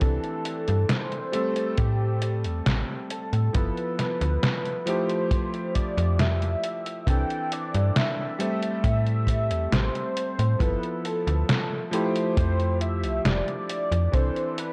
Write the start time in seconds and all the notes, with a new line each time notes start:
0.00 C2 E3 C4 D4 A4, kick, closed hi-hat
0.24 closed hi-hat
0.45 closed hi-hat
0.68 G2, closed hi-hat
0.89 C5, snare, closed hi-hat
1.12 closed hi-hat
1.32 G3 A3 C4 A4, closed hi-hat
1.56 closed hi-hat
1.78 A2 G4, kick, closed hi-hat
2.22 closed hi-hat
2.44 E2, closed hi-hat
2.66 A1, snare, closed hi-hat
3.10 A4, closed hi-hat
3.33 A2, closed hi-hat
3.53 G1 F3 B3 E4 A4 B4, kick, closed hi-hat
3.77 closed hi-hat
3.99 snare, closed hi-hat
4.21 D2, closed hi-hat
4.43 snare, closed hi-hat
4.65 closed hi-hat
4.86 F3 A3 E4 G4 C5, closed hi-hat
5.09 closed hi-hat
5.31 kick, closed hi-hat
5.54 closed hi-hat
5.75 D5, kick, closed hi-hat
5.98 F2, closed hi-hat
6.19 E5, snare, closed hi-hat
6.42 closed hi-hat
6.64 closed hi-hat
6.86 closed hi-hat
7.06 C2 E3 C4 D4 A4 G5, kick, closed hi-hat
7.30 closed hi-hat
7.52 D5, closed hi-hat
7.74 G2, closed hi-hat
7.96 E5, snare, closed hi-hat
8.39 G3 A3 C4 A4, closed hi-hat
8.63 closed hi-hat
8.84 A2 E5, kick, closed hi-hat
9.07 closed hi-hat
9.27 kick, closed hi-hat
9.51 E2, closed hi-hat
9.73 A1 C5, snare, closed hi-hat
9.95 closed hi-hat
10.17 closed hi-hat
10.39 A2, closed hi-hat
10.59 G1 F3 B3 E4 A4 B4, kick, closed hi-hat
10.83 closed hi-hat
11.05 A4, closed hi-hat
11.27 D2, closed hi-hat
11.49 snare, closed hi-hat
11.91 F3 A3 E4 G4 C5, closed hi-hat
12.16 closed hi-hat
12.37 F2 C5, kick, closed hi-hat
12.60 closed hi-hat
12.81 E5, closed hi-hat
13.03 C2, closed hi-hat
13.25 F1 D5, snare, closed hi-hat
13.48 closed hi-hat
13.70 closed hi-hat
13.92 F2, closed hi-hat
14.12 C2 E3 C4 D4 A4 C5, kick, closed hi-hat
14.36 closed hi-hat
14.58 B4, closed hi-hat